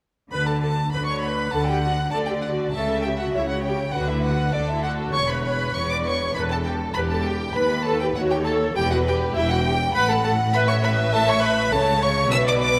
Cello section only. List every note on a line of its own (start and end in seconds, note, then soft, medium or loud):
0.31 0.85 D3 medium
0.93 1.46 D3 medium
1.53 2.06 D3 medium
2.13 2.66 D3 medium
2.73 3.27 C#3 medium
3.34 3.88 C#3 medium
3.94 4.48 D3 medium
4.55 5.08 D3 medium
5.14 5.67 E2 medium
5.75 6.28 E2 medium
6.35 6.87 E2 medium
6.94 7.48 E2 medium
7.55 8.08 D#2 medium
8.15 8.69 D#2 medium
8.75 9.28 E2 medium
9.34 9.87 E2 medium
9.94 11.68 A2 medium
11.71 12.31 C#3 medium
12.30 12.79 B2 medium